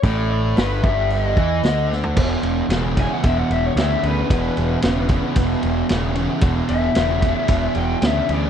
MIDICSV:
0, 0, Header, 1, 5, 480
1, 0, Start_track
1, 0, Tempo, 531915
1, 41, Time_signature, 4, 2, 24, 8
1, 7669, End_track
2, 0, Start_track
2, 0, Title_t, "Lead electric guitar"
2, 0, Program_c, 0, 29
2, 36, Note_on_c, 0, 74, 85
2, 262, Note_off_c, 0, 74, 0
2, 277, Note_on_c, 0, 74, 76
2, 503, Note_off_c, 0, 74, 0
2, 517, Note_on_c, 0, 71, 75
2, 751, Note_on_c, 0, 76, 79
2, 767, Note_off_c, 0, 71, 0
2, 1004, Note_off_c, 0, 76, 0
2, 1008, Note_on_c, 0, 75, 71
2, 1690, Note_off_c, 0, 75, 0
2, 2711, Note_on_c, 0, 80, 88
2, 2827, Note_off_c, 0, 80, 0
2, 2827, Note_on_c, 0, 78, 77
2, 2933, Note_off_c, 0, 78, 0
2, 2940, Note_on_c, 0, 76, 74
2, 3050, Note_off_c, 0, 76, 0
2, 3059, Note_on_c, 0, 78, 73
2, 3176, Note_off_c, 0, 78, 0
2, 3176, Note_on_c, 0, 76, 76
2, 3288, Note_off_c, 0, 76, 0
2, 3300, Note_on_c, 0, 73, 75
2, 3410, Note_off_c, 0, 73, 0
2, 3412, Note_on_c, 0, 76, 80
2, 3642, Note_off_c, 0, 76, 0
2, 3663, Note_on_c, 0, 71, 79
2, 5059, Note_off_c, 0, 71, 0
2, 6039, Note_on_c, 0, 76, 98
2, 6972, Note_off_c, 0, 76, 0
2, 7013, Note_on_c, 0, 79, 81
2, 7241, Note_off_c, 0, 79, 0
2, 7270, Note_on_c, 0, 76, 84
2, 7490, Note_off_c, 0, 76, 0
2, 7521, Note_on_c, 0, 74, 86
2, 7669, Note_off_c, 0, 74, 0
2, 7669, End_track
3, 0, Start_track
3, 0, Title_t, "Distorted electric guitar"
3, 0, Program_c, 1, 30
3, 36, Note_on_c, 1, 45, 96
3, 512, Note_off_c, 1, 45, 0
3, 512, Note_on_c, 1, 43, 91
3, 746, Note_off_c, 1, 43, 0
3, 757, Note_on_c, 1, 43, 92
3, 1233, Note_off_c, 1, 43, 0
3, 1238, Note_on_c, 1, 52, 93
3, 1473, Note_off_c, 1, 52, 0
3, 1479, Note_on_c, 1, 50, 95
3, 1945, Note_on_c, 1, 40, 76
3, 1949, Note_off_c, 1, 50, 0
3, 1952, Note_on_c, 1, 47, 80
3, 2387, Note_off_c, 1, 40, 0
3, 2391, Note_off_c, 1, 47, 0
3, 2443, Note_on_c, 1, 49, 79
3, 2444, Note_on_c, 1, 40, 70
3, 2660, Note_off_c, 1, 49, 0
3, 2661, Note_off_c, 1, 40, 0
3, 2676, Note_on_c, 1, 40, 70
3, 2682, Note_on_c, 1, 49, 74
3, 2897, Note_off_c, 1, 40, 0
3, 2900, Note_off_c, 1, 49, 0
3, 2919, Note_on_c, 1, 40, 75
3, 2923, Note_on_c, 1, 47, 97
3, 3355, Note_off_c, 1, 40, 0
3, 3357, Note_off_c, 1, 47, 0
3, 3402, Note_on_c, 1, 40, 75
3, 3406, Note_on_c, 1, 49, 92
3, 3621, Note_off_c, 1, 40, 0
3, 3622, Note_off_c, 1, 49, 0
3, 3639, Note_on_c, 1, 40, 70
3, 3646, Note_on_c, 1, 49, 83
3, 3859, Note_off_c, 1, 40, 0
3, 3862, Note_off_c, 1, 49, 0
3, 3888, Note_on_c, 1, 40, 79
3, 3893, Note_on_c, 1, 47, 85
3, 4320, Note_off_c, 1, 40, 0
3, 4322, Note_off_c, 1, 47, 0
3, 4362, Note_on_c, 1, 40, 74
3, 4364, Note_on_c, 1, 49, 89
3, 4581, Note_off_c, 1, 40, 0
3, 4581, Note_off_c, 1, 49, 0
3, 4606, Note_on_c, 1, 40, 71
3, 4612, Note_on_c, 1, 49, 72
3, 4823, Note_off_c, 1, 40, 0
3, 4826, Note_off_c, 1, 49, 0
3, 4840, Note_on_c, 1, 40, 85
3, 4844, Note_on_c, 1, 47, 85
3, 5276, Note_off_c, 1, 40, 0
3, 5278, Note_off_c, 1, 47, 0
3, 5317, Note_on_c, 1, 40, 78
3, 5319, Note_on_c, 1, 49, 97
3, 5538, Note_off_c, 1, 40, 0
3, 5539, Note_off_c, 1, 49, 0
3, 5551, Note_on_c, 1, 40, 77
3, 5560, Note_on_c, 1, 49, 80
3, 5775, Note_off_c, 1, 40, 0
3, 5779, Note_off_c, 1, 49, 0
3, 5792, Note_on_c, 1, 40, 83
3, 5794, Note_on_c, 1, 47, 90
3, 6231, Note_off_c, 1, 40, 0
3, 6232, Note_off_c, 1, 47, 0
3, 6282, Note_on_c, 1, 40, 80
3, 6284, Note_on_c, 1, 49, 85
3, 6500, Note_off_c, 1, 40, 0
3, 6501, Note_off_c, 1, 49, 0
3, 6522, Note_on_c, 1, 40, 70
3, 6527, Note_on_c, 1, 49, 71
3, 6740, Note_off_c, 1, 40, 0
3, 6742, Note_off_c, 1, 49, 0
3, 6761, Note_on_c, 1, 40, 78
3, 6762, Note_on_c, 1, 47, 97
3, 7194, Note_off_c, 1, 40, 0
3, 7195, Note_off_c, 1, 47, 0
3, 7235, Note_on_c, 1, 40, 75
3, 7237, Note_on_c, 1, 49, 89
3, 7455, Note_off_c, 1, 40, 0
3, 7457, Note_off_c, 1, 49, 0
3, 7473, Note_on_c, 1, 40, 77
3, 7480, Note_on_c, 1, 49, 75
3, 7669, Note_off_c, 1, 40, 0
3, 7669, Note_off_c, 1, 49, 0
3, 7669, End_track
4, 0, Start_track
4, 0, Title_t, "Picked electric bass"
4, 0, Program_c, 2, 34
4, 29, Note_on_c, 2, 33, 90
4, 482, Note_off_c, 2, 33, 0
4, 516, Note_on_c, 2, 31, 86
4, 742, Note_off_c, 2, 31, 0
4, 752, Note_on_c, 2, 31, 86
4, 1204, Note_off_c, 2, 31, 0
4, 1232, Note_on_c, 2, 40, 92
4, 1461, Note_off_c, 2, 40, 0
4, 1476, Note_on_c, 2, 38, 76
4, 1927, Note_off_c, 2, 38, 0
4, 1958, Note_on_c, 2, 28, 90
4, 2125, Note_off_c, 2, 28, 0
4, 2192, Note_on_c, 2, 28, 75
4, 2361, Note_off_c, 2, 28, 0
4, 2427, Note_on_c, 2, 28, 86
4, 2763, Note_off_c, 2, 28, 0
4, 2922, Note_on_c, 2, 28, 82
4, 3088, Note_off_c, 2, 28, 0
4, 3160, Note_on_c, 2, 28, 85
4, 3327, Note_off_c, 2, 28, 0
4, 3394, Note_on_c, 2, 38, 85
4, 3563, Note_off_c, 2, 38, 0
4, 3639, Note_on_c, 2, 38, 88
4, 3807, Note_off_c, 2, 38, 0
4, 3878, Note_on_c, 2, 28, 92
4, 4046, Note_off_c, 2, 28, 0
4, 4128, Note_on_c, 2, 28, 82
4, 4292, Note_off_c, 2, 28, 0
4, 4366, Note_on_c, 2, 28, 92
4, 4696, Note_off_c, 2, 28, 0
4, 4836, Note_on_c, 2, 28, 88
4, 5005, Note_off_c, 2, 28, 0
4, 5086, Note_on_c, 2, 28, 90
4, 5251, Note_off_c, 2, 28, 0
4, 5330, Note_on_c, 2, 28, 86
4, 5658, Note_off_c, 2, 28, 0
4, 5792, Note_on_c, 2, 28, 88
4, 5962, Note_off_c, 2, 28, 0
4, 6044, Note_on_c, 2, 28, 88
4, 6209, Note_off_c, 2, 28, 0
4, 6285, Note_on_c, 2, 28, 92
4, 6614, Note_off_c, 2, 28, 0
4, 6755, Note_on_c, 2, 28, 91
4, 6923, Note_off_c, 2, 28, 0
4, 7001, Note_on_c, 2, 28, 85
4, 7167, Note_off_c, 2, 28, 0
4, 7241, Note_on_c, 2, 38, 78
4, 7407, Note_off_c, 2, 38, 0
4, 7483, Note_on_c, 2, 38, 83
4, 7648, Note_off_c, 2, 38, 0
4, 7669, End_track
5, 0, Start_track
5, 0, Title_t, "Drums"
5, 31, Note_on_c, 9, 36, 96
5, 31, Note_on_c, 9, 46, 47
5, 121, Note_off_c, 9, 36, 0
5, 122, Note_off_c, 9, 46, 0
5, 512, Note_on_c, 9, 46, 50
5, 522, Note_on_c, 9, 38, 105
5, 602, Note_off_c, 9, 46, 0
5, 612, Note_off_c, 9, 38, 0
5, 755, Note_on_c, 9, 36, 106
5, 845, Note_off_c, 9, 36, 0
5, 995, Note_on_c, 9, 46, 48
5, 1086, Note_off_c, 9, 46, 0
5, 1235, Note_on_c, 9, 36, 92
5, 1325, Note_off_c, 9, 36, 0
5, 1474, Note_on_c, 9, 46, 45
5, 1484, Note_on_c, 9, 38, 96
5, 1565, Note_off_c, 9, 46, 0
5, 1575, Note_off_c, 9, 38, 0
5, 1734, Note_on_c, 9, 38, 50
5, 1824, Note_off_c, 9, 38, 0
5, 1836, Note_on_c, 9, 43, 81
5, 1926, Note_off_c, 9, 43, 0
5, 1954, Note_on_c, 9, 49, 107
5, 1957, Note_on_c, 9, 36, 101
5, 2044, Note_off_c, 9, 49, 0
5, 2047, Note_off_c, 9, 36, 0
5, 2195, Note_on_c, 9, 51, 67
5, 2285, Note_off_c, 9, 51, 0
5, 2437, Note_on_c, 9, 51, 85
5, 2447, Note_on_c, 9, 38, 102
5, 2527, Note_off_c, 9, 51, 0
5, 2537, Note_off_c, 9, 38, 0
5, 2679, Note_on_c, 9, 51, 69
5, 2680, Note_on_c, 9, 36, 85
5, 2769, Note_off_c, 9, 51, 0
5, 2771, Note_off_c, 9, 36, 0
5, 2919, Note_on_c, 9, 51, 78
5, 2923, Note_on_c, 9, 36, 99
5, 3009, Note_off_c, 9, 51, 0
5, 3013, Note_off_c, 9, 36, 0
5, 3164, Note_on_c, 9, 51, 54
5, 3254, Note_off_c, 9, 51, 0
5, 3402, Note_on_c, 9, 51, 78
5, 3412, Note_on_c, 9, 38, 104
5, 3492, Note_off_c, 9, 51, 0
5, 3502, Note_off_c, 9, 38, 0
5, 3640, Note_on_c, 9, 51, 59
5, 3730, Note_off_c, 9, 51, 0
5, 3883, Note_on_c, 9, 36, 103
5, 3884, Note_on_c, 9, 51, 85
5, 3973, Note_off_c, 9, 36, 0
5, 3974, Note_off_c, 9, 51, 0
5, 4123, Note_on_c, 9, 51, 63
5, 4213, Note_off_c, 9, 51, 0
5, 4352, Note_on_c, 9, 51, 90
5, 4361, Note_on_c, 9, 38, 109
5, 4442, Note_off_c, 9, 51, 0
5, 4452, Note_off_c, 9, 38, 0
5, 4590, Note_on_c, 9, 51, 66
5, 4598, Note_on_c, 9, 36, 93
5, 4680, Note_off_c, 9, 51, 0
5, 4688, Note_off_c, 9, 36, 0
5, 4833, Note_on_c, 9, 51, 97
5, 4839, Note_on_c, 9, 36, 98
5, 4923, Note_off_c, 9, 51, 0
5, 4929, Note_off_c, 9, 36, 0
5, 5077, Note_on_c, 9, 51, 65
5, 5167, Note_off_c, 9, 51, 0
5, 5316, Note_on_c, 9, 51, 87
5, 5326, Note_on_c, 9, 38, 103
5, 5406, Note_off_c, 9, 51, 0
5, 5416, Note_off_c, 9, 38, 0
5, 5554, Note_on_c, 9, 51, 66
5, 5644, Note_off_c, 9, 51, 0
5, 5787, Note_on_c, 9, 51, 92
5, 5796, Note_on_c, 9, 36, 109
5, 5877, Note_off_c, 9, 51, 0
5, 5886, Note_off_c, 9, 36, 0
5, 6033, Note_on_c, 9, 51, 70
5, 6123, Note_off_c, 9, 51, 0
5, 6272, Note_on_c, 9, 51, 86
5, 6282, Note_on_c, 9, 38, 110
5, 6362, Note_off_c, 9, 51, 0
5, 6372, Note_off_c, 9, 38, 0
5, 6517, Note_on_c, 9, 51, 65
5, 6518, Note_on_c, 9, 36, 91
5, 6607, Note_off_c, 9, 51, 0
5, 6608, Note_off_c, 9, 36, 0
5, 6750, Note_on_c, 9, 51, 90
5, 6757, Note_on_c, 9, 36, 102
5, 6840, Note_off_c, 9, 51, 0
5, 6847, Note_off_c, 9, 36, 0
5, 6990, Note_on_c, 9, 51, 57
5, 7080, Note_off_c, 9, 51, 0
5, 7235, Note_on_c, 9, 51, 79
5, 7245, Note_on_c, 9, 38, 93
5, 7326, Note_off_c, 9, 51, 0
5, 7336, Note_off_c, 9, 38, 0
5, 7479, Note_on_c, 9, 51, 61
5, 7569, Note_off_c, 9, 51, 0
5, 7669, End_track
0, 0, End_of_file